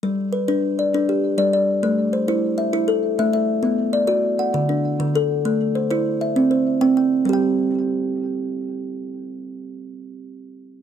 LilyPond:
\new Staff \with { instrumentName = "Kalimba" } { \time 12/8 \key g \major \tempo 4. = 133 << { r4 b'8 b'4 d''4 g'4 d''8 d''4~ | d''8 r8 c''8 c''4 e''4 a'4 e''8 e''4~ | e''8 r8 d''8 d''4 fis''4 d'4. a'4~ | a'8 r8 c''8 c''4 e''4 c''4 g''8 g''4~ |
g''8 r1 r4. | r1. | } \\ { g4 r8 d'4 r8 d'4 r8 g4 r8 | a4 r8 e'4 r8 e'4 r8 a4 r8 | b4 r8 fis'4 r8 d4 r8 d4 r8 | a4 r8 e'4 r8 c'4 r8 c'4 r8 |
<g g' g''>1.~ | <g g' g''>1. | } >> }